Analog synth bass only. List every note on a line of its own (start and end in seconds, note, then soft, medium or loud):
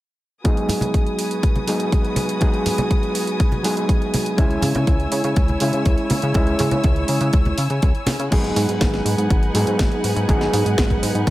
4.38 4.58 C#2 medium
4.63 4.73 C#3 loud
4.75 4.85 C#3 medium
4.87 5.07 C#2 loud
5.12 5.22 C#3 medium
5.24 5.34 C#3 medium
5.36 5.57 C#2 medium
5.62 5.72 C#3 medium
5.74 5.84 C#3 medium
5.86 5.96 C#2 medium
6.11 6.21 C#3 medium
6.23 6.33 C#3 medium
6.35 6.55 C#2 medium
6.60 6.70 C#3 loud
6.72 6.82 C#3 medium
6.84 7.04 C#2 loud
7.09 7.19 C#3 medium
7.21 7.31 C#3 medium
7.33 7.53 C#2 medium
7.58 7.68 C#3 medium
7.70 7.80 C#3 medium
7.83 7.93 C#2 loud
8.07 8.17 C#3 medium
8.20 8.30 C#3 medium
8.32 8.52 G#1 medium
8.56 8.66 G#2 loud
8.69 8.79 G#2 medium
8.81 9.01 G#1 loud
9.05 9.16 G#2 medium
9.18 9.28 G#2 medium
9.30 9.50 G#1 medium
9.55 9.65 G#2 medium
9.67 9.77 G#2 medium
9.80 9.90 G#1 loud
10.04 10.14 G#2 medium
10.16 10.26 G#2 medium
10.29 10.49 G#1 loud
10.53 10.63 G#2 loud
10.66 10.76 G#2 medium
10.78 10.98 G#1 loud
11.02 11.12 G#2 medium
11.15 11.25 G#2 medium
11.27 11.30 G#1 medium